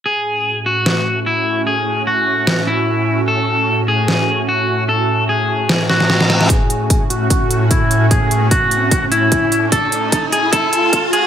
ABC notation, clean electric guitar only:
X:1
M:4/4
L:1/8
Q:"Swing 16ths" 1/4=149
K:F#m
V:1 name="Clean electric guitar"
G3 F3 E2 | G2 F3 E3 | A3 G3 F2 | A2 G3 F3 |
G3 F3 E2 | G2 F3 E3 | A3 G A3 G |]